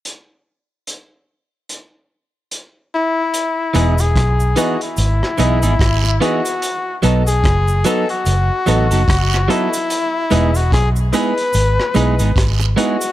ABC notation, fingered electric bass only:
X:1
M:4/4
L:1/16
Q:"Swing 16ths" 1/4=73
K:E
V:1 name="Fingered electric bass" clef=bass
z16 | z2 E,,,2 B,,,2 z2 G,,, z B,,, G,,, G,,,2 z2 | z2 B,,,2 F,,,2 z2 F,,, z A,,, F,,, F,,,2 z2 | z2 E,,,2 B,,,2 z2 G,,, z B,,, G,,, G,,,2 z2 |]